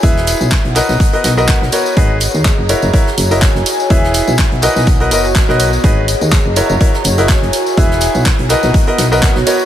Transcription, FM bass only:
X:1
M:4/4
L:1/16
Q:"Swing 16ths" 1/4=124
K:B
V:1 name="FM bass" clef=bass
E,,,3 B,,, z B,,, z B,,, z2 B,,,3 B,,, z2 | G,,,3 D,, z F,,, z F,,, z2 F,,,3 F,,, z2 | E,,,3 B,,, z B,,, z B,,,3 F,,,3 B,,,3 | G,,,3 D,, z F,,, z F,,, z2 F,,,3 F,,, z2 |
E,,,3 B,,, z B,,, z B,,, z2 B,,,3 B,,, z2 |]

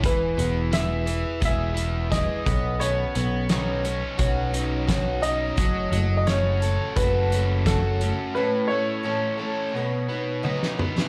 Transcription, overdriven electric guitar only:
X:1
M:4/4
L:1/8
Q:1/4=86
K:Bmix
V:1 name="Overdriven electric guitar"
E, B, E B G E G B, | B, B, D c F D F D | F, F, C A F C F C | A,, A, C A B,, B, D B, |]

